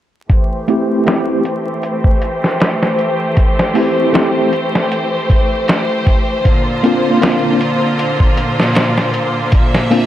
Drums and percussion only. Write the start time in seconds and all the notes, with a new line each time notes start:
0.30 kick, closed hi-hat
0.68 closed hi-hat
1.07 snare, closed hi-hat
1.45 closed hi-hat
1.83 closed hi-hat
2.04 kick
2.22 closed hi-hat
2.44 snare
2.60 snare, closed hi-hat
2.83 snare
2.99 closed hi-hat
3.37 kick, closed hi-hat
3.59 snare
3.75 open hi-hat
4.14 snare, closed hi-hat
4.53 closed hi-hat
4.75 snare
4.92 closed hi-hat
5.30 kick, closed hi-hat
5.68 snare, closed hi-hat
5.89 closed hi-hat
6.07 kick, closed hi-hat
6.45 kick, closed hi-hat
6.84 closed hi-hat
7.22 snare, closed hi-hat
7.61 closed hi-hat
7.99 closed hi-hat
8.20 kick
8.37 closed hi-hat
8.60 snare
8.75 snare, closed hi-hat
8.98 snare
9.14 closed hi-hat
9.52 kick, closed hi-hat
9.74 snare
9.91 open hi-hat